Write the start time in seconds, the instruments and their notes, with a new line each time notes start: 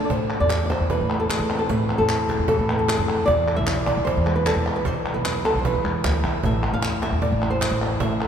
Already playing: nylon-string guitar D4 F4
0.05 nylon-string guitar D5
0.10 upright bass A2, nylon-string guitar A2 C5, cajon bass
0.30 clap
0.40 upright bass E2, nylon-string guitar D5
0.49 cajon slap, clap
0.66 nylon-string guitar C5 D5
0.70 cajon bass, cajon slap, clap
0.80 upright bass E2
0.90 nylon-string guitar E3 B4, cajon bass
1.01 upright bass A2
1.10 nylon-string guitar A3, clap
1.20 nylon-string guitar A4
1.30 nylon-string guitar G#4, cajon bass, cajon slap, clap
1.40 upright bass A2
1.50 nylon-string guitar C4, clap
1.59 nylon-string guitar A4
1.69 upright bass A2, nylon-string guitar A2 B4, cajon bass
1.89 nylon-string guitar C4, cajon slap, clap
1.98 upright bass E2, nylon-string guitar A4
2.09 cajon slap, clap
2.29 nylon-string guitar G#4, cajon bass, clap
2.39 upright bass E2
2.48 nylon-string guitar E3 A4, cajon bass
2.59 upright bass A2
2.69 nylon-string guitar A3 B4, clap
2.79 nylon-string guitar A4
2.88 nylon-string guitar G#4, cajon bass, cajon slap, clap
2.98 upright bass F2, nylon-string guitar A4
3.09 clap
3.26 upright bass E2, nylon-string guitar E3 D5, cajon bass
3.48 nylon-string guitar E4, clap
3.56 upright bass B1, nylon-string guitar E5
3.67 cajon slap, clap
3.86 nylon-string guitar D5, cajon bass, clap
3.97 upright bass B1
4.05 nylon-string guitar E3 C5, cajon bass
4.17 upright bass E2
4.26 nylon-string guitar G#3, clap
4.36 nylon-string guitar B4
4.46 nylon-string guitar A4, cajon bass, cajon slap, clap
4.56 upright bass E2
4.66 clap
4.76 nylon-string guitar B4
4.85 upright bass E2, nylon-string guitar E3 C5, cajon bass
5.06 nylon-string guitar G#3, clap
5.14 upright bass B1, nylon-string guitar B4
5.25 cajon slap, clap
5.45 nylon-string guitar A4, cajon bass, cajon slap, clap
5.55 upright bass B1
5.59 nylon-string guitar C5
5.65 nylon-string guitar E3 B4, cajon bass
5.75 upright bass E2
5.84 upright bass E2, nylon-string guitar G#3, clap
6.04 upright bass D2, nylon-string guitar G#3, cajon slap, clap
6.24 upright bass B1, nylon-string guitar E5, clap
6.43 upright bass A1, nylon-string guitar A2 E5, cajon bass
6.63 cajon slap, clap
6.73 upright bass E2, nylon-string guitar F5
6.82 cajon slap, clap
7.02 nylon-string guitar E5, cajon bass, cajon slap, clap
7.12 upright bass E2
7.22 nylon-string guitar A2 D5, cajon bass
7.32 upright bass A1
7.42 nylon-string guitar E4, cajon slap, clap
7.50 nylon-string guitar C5
7.61 cajon bass, cajon slap, clap
7.71 upright bass A1
7.82 nylon-string guitar C5, clap
8.00 upright bass A1, nylon-string guitar A2 E5, cajon bass
8.21 nylon-string guitar A4, cajon slap, clap